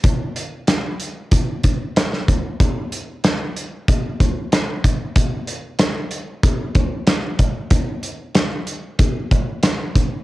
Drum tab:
HH |x-x-x-x-x-x-x-x-|x-x-x-x-x-x-x-x-|x-x-x-x-x-x-x-x-|x-x-x-x-x-x-x-x-|
SD |----o-------oo--|----o-------o---|----o-------o---|----o-------o---|
BD |o-------o-o---o-|o-------o-o---o-|o-------o-o---o-|o-------o-o---o-|